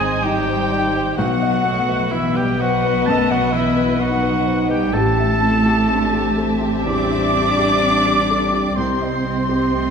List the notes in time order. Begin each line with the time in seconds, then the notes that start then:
Already playing: G#1 D#3 G#3 C4 D#4 G#4 C5 D5 D#5 G#5
0.00 C5
0.22 G3 D#4 G4 G5
0.47 C5
0.71 D5
0.94 C5
1.17 B1 F#3 B3 F#4 B4 D#5 F#5
1.41 D#5
1.65 A3 B3
1.88 B4
2.11 E3 B3 E4 E5
2.34 G3 G4 B4 G5
2.58 F#3 F#4 C5 F#5
2.84 B4
3.05 F#2 A3 A5
3.09 A4
3.29 F#3 F#4 D#5 F#5
3.52 E3 B3 E4 E5
3.77 B4
3.98 F#3 B3 D#4 F#4 F#5
4.23 B4
4.45 C5
4.69 G3 G4 B4 G5
4.93 A1 A3 C4 G4 A4 E5 A5
5.19 E5
5.42 C4 E4
5.66 G4
5.90 C4 D4
6.13 G4
6.37 C4 A4
6.61 G4
6.85 E2 G3 D4 D5 D6
7.10 E5
7.34 C4
7.58 G4
7.83 C4
8.06 G4
8.30 A4
8.54 G4
8.75 C2 C4 G4 C5 D#5 C6
9.01 D#5
9.25 C4
9.49 G4
9.72 A3 C4